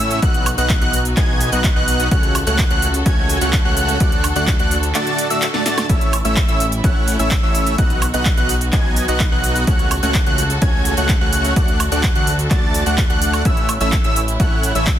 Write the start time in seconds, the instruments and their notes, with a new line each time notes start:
Already playing: analog synth bass A2, supersaw synth A3 C#4 E4 C#5 E5, string section A3 C#4 E4, analog synth lead E6
0.11 closed hi-hat, cabasa
0.22 analog synth bass B1, string section B3 D#4 F#4, supersaw synth B3 D#4 F#4 D#5 F#5, analog synth lead F#6, kick, closed hi-hat, cabasa
0.34 closed hi-hat
0.46 open hi-hat, cabasa, high woodblock
0.58 analog synth bass B1, supersaw synth B3 D#4 F#4 D#5 F#5, analog synth lead F#6, closed hi-hat, cabasa
0.69 kick, clap, closed hi-hat, cabasa
0.81 analog synth bass B1, supersaw synth B3 D#4 F#4 D#5 F#5, analog synth lead F#6, closed hi-hat
0.93 open hi-hat, cabasa
1.05 closed hi-hat, cabasa
1.17 analog synth bass B1, supersaw synth B3 D#4 F#4 D#5 G#5, analog synth lead G#6, kick, clap, closed hi-hat, cabasa
1.41 open hi-hat, cabasa
1.52 analog synth bass B1, supersaw synth B3 D#4 F#4 D#5 F#5, analog synth lead F#6, closed hi-hat, cabasa
1.64 kick, clap, closed hi-hat, cabasa
1.76 analog synth bass B1, supersaw synth B3 D#4 F#4 D#5 F#5, analog synth lead F#6
1.88 open hi-hat, cabasa
2.00 closed hi-hat, cabasa
2.11 analog synth bass C#2, string section C#3 C#4 A4, supersaw synth A3 C#4 F#4 C#5 F#5, analog synth lead F#6, kick, closed hi-hat, cabasa
2.23 closed hi-hat
2.35 open hi-hat, cabasa, high woodblock
2.47 analog synth bass C#2, supersaw synth A3 C#4 F#4 C#5 F#5, analog synth lead F#6, closed hi-hat, cabasa
2.58 kick, clap, closed hi-hat, cabasa
2.70 analog synth bass C#2, supersaw synth A3 C#4 F#4 C#5 F#5, analog synth lead F#6, closed hi-hat
2.82 open hi-hat, cabasa
2.94 closed hi-hat, cabasa
3.06 analog synth bass C#2, supersaw synth A3 C#4 F#4 C#5 G#5, analog synth lead G#6, kick, closed hi-hat, cabasa
3.29 open hi-hat, cabasa
3.41 analog synth bass C#2, supersaw synth A3 C#4 F#4 C#5 F#5, analog synth lead F#6, closed hi-hat, cabasa
3.53 kick, clap, closed hi-hat, cabasa
3.65 analog synth bass C#2, supersaw synth A3 C#4 F#4 C#5 F#5, analog synth lead F#6
3.77 open hi-hat, cabasa
3.89 closed hi-hat, cabasa
4.00 analog synth bass D2, string section D3 D4, supersaw synth A3 D4 F#4 D5 F#5, analog synth lead F#6, kick, closed hi-hat, cabasa
4.12 closed hi-hat
4.24 open hi-hat, cabasa, high woodblock
4.36 analog synth bass D2, supersaw synth A3 D4 F#4 D5 F#5, analog synth lead F#6, closed hi-hat, cabasa
4.47 kick, clap, closed hi-hat, cabasa
4.59 analog synth bass D2, supersaw synth A3 D4 F#4 D5 F#5, analog synth lead F#6, closed hi-hat
4.71 open hi-hat, cabasa
4.83 closed hi-hat, cabasa
4.95 supersaw synth A3 D4 F#4 D5 A5, analog synth lead A6, clap, closed hi-hat, cabasa
5.07 closed hi-hat
5.18 open hi-hat, cabasa
5.30 supersaw synth A3 D4 F#4 D5 E5, analog synth lead E6, closed hi-hat, cabasa
5.42 clap, closed hi-hat, cabasa
5.54 supersaw synth A3 D4 F#4 D5 A5, analog synth lead A6, snare
5.66 supersaw synth A3 D4 F#4 D5 A5, analog synth lead A6, snare, open hi-hat, cabasa
5.78 snare, closed hi-hat, cabasa, high woodblock
5.89 analog synth bass A1, string section A3 C#4 E4, supersaw synth A3 C#4 E4 C#5 E5, analog synth lead E6, kick, closed hi-hat, cabasa
6.01 closed hi-hat
6.13 open hi-hat, cabasa, high woodblock
6.25 analog synth bass A1, supersaw synth A3 C#4 E4 C#5 E5, analog synth lead E6, closed hi-hat, cabasa
6.36 kick, clap, closed hi-hat, cabasa
6.48 analog synth bass A1, supersaw synth A3 C#4 E4 C#5 E5, analog synth lead E6, closed hi-hat
6.60 open hi-hat, cabasa
6.72 closed hi-hat, cabasa
6.84 analog synth bass A1, supersaw synth A3 C#4 E4 C#5 F#5, analog synth lead F#6, kick, closed hi-hat, cabasa
7.08 open hi-hat, cabasa
7.19 analog synth bass A1, supersaw synth A3 C#4 E4 C#5 E5, analog synth lead E6, closed hi-hat, cabasa
7.31 kick, clap, closed hi-hat, cabasa
7.43 analog synth bass A1, supersaw synth A3 C#4 E4 C#5 E5, analog synth lead E6
7.55 open hi-hat, cabasa
7.67 closed hi-hat, cabasa
7.78 analog synth bass B1, string section B3 D#4 F#4, supersaw synth B3 D#4 F#4 D#5 F#5, analog synth lead F#6, kick, closed hi-hat, cabasa
7.90 closed hi-hat
8.02 open hi-hat, cabasa, high woodblock
8.14 analog synth bass B1, supersaw synth B3 D#4 F#4 D#5 F#5, analog synth lead F#6, closed hi-hat, cabasa
8.25 kick, clap, closed hi-hat, cabasa
8.37 analog synth bass B1, supersaw synth B3 D#4 F#4 D#5 F#5, analog synth lead F#6, closed hi-hat
8.49 open hi-hat, cabasa
8.61 closed hi-hat, cabasa
8.73 analog synth bass B1, supersaw synth B3 D#4 F#4 D#5 G#5, analog synth lead G#6, kick, clap, closed hi-hat, cabasa
8.96 open hi-hat, cabasa
9.08 analog synth bass B1, supersaw synth B3 D#4 F#4 D#5 F#5, analog synth lead F#6, closed hi-hat, cabasa
9.20 kick, clap, closed hi-hat, cabasa
9.32 analog synth bass B1, supersaw synth B3 D#4 F#4 D#5 F#5, analog synth lead F#6
9.44 open hi-hat, cabasa
9.56 closed hi-hat, cabasa
9.67 analog synth bass C#2, string section C#3 C#4 A4, supersaw synth A3 C#4 F#4 C#5 F#5, analog synth lead F#6, kick, closed hi-hat, cabasa
9.79 closed hi-hat
9.91 open hi-hat, cabasa, high woodblock
10.03 analog synth bass C#2, supersaw synth A3 C#4 F#4 C#5 F#5, analog synth lead F#6, closed hi-hat, cabasa
10.14 kick, clap, closed hi-hat, cabasa
10.26 analog synth bass C#2, supersaw synth A3 C#4 F#4 C#5 F#5, analog synth lead F#6, closed hi-hat
10.38 open hi-hat, cabasa
10.50 closed hi-hat, cabasa
10.62 analog synth bass C#2, supersaw synth A3 C#4 F#4 C#5 G#5, analog synth lead G#6, kick, closed hi-hat, cabasa
10.85 open hi-hat, cabasa
10.97 analog synth bass C#2, supersaw synth A3 C#4 F#4 C#5 F#5, analog synth lead F#6, closed hi-hat, cabasa
11.09 kick, clap, closed hi-hat, cabasa
11.21 analog synth bass C#2, supersaw synth A3 C#4 F#4 C#5 F#5, analog synth lead F#6
11.33 open hi-hat, cabasa
11.45 closed hi-hat, cabasa
11.56 analog synth bass D2, string section D3 D4 A4, supersaw synth A3 D4 F#4 D5 F#5, analog synth lead F#6, kick, closed hi-hat, cabasa
11.68 closed hi-hat
11.80 open hi-hat, cabasa, high woodblock
11.92 analog synth bass D2, supersaw synth A3 D4 F#4 D5 F#5, analog synth lead F#6, closed hi-hat, cabasa
12.03 kick, clap, closed hi-hat, cabasa
12.15 analog synth bass D2, supersaw synth A3 D4 F#4 D5 F#5, analog synth lead F#6, closed hi-hat
12.27 open hi-hat, cabasa
12.39 closed hi-hat, cabasa
12.51 analog synth bass D2, supersaw synth A3 D4 F#4 D5 A5, analog synth lead A6, kick, clap, closed hi-hat, cabasa
12.74 open hi-hat, cabasa
12.86 analog synth bass D2, supersaw synth A3 D4 F#4 D5 F#5, analog synth lead F#6, closed hi-hat, cabasa
12.98 kick, clap, closed hi-hat, cabasa
13.10 analog synth bass D2, supersaw synth A3 D4 F#4 D5 F#5, analog synth lead F#6, closed hi-hat
13.22 open hi-hat, cabasa
13.33 closed hi-hat, cabasa, high woodblock
13.45 analog synth bass A1, supersaw synth A3 C#4 E4 C#5 E5, string section A3 C#4 E4, analog synth lead E6, kick, closed hi-hat, cabasa
13.57 closed hi-hat
13.69 open hi-hat, cabasa, high woodblock
13.81 analog synth bass A1, supersaw synth A3 C#4 E4 C#5 E5, analog synth lead E6, closed hi-hat, cabasa
13.92 kick, clap, closed hi-hat, cabasa
14.04 analog synth bass A1, supersaw synth A3 C#4 E4 C#5 E5, analog synth lead E6, closed hi-hat
14.16 open hi-hat, cabasa
14.28 closed hi-hat, cabasa
14.40 analog synth bass A1, supersaw synth A3 C#4 E4 C#5 F#5, analog synth lead F#6, kick, closed hi-hat, cabasa
14.63 open hi-hat, cabasa
14.75 analog synth bass A1, supersaw synth A3 C#4 E4 C#5 E5, analog synth lead E6, closed hi-hat, cabasa
14.87 kick, clap, closed hi-hat, cabasa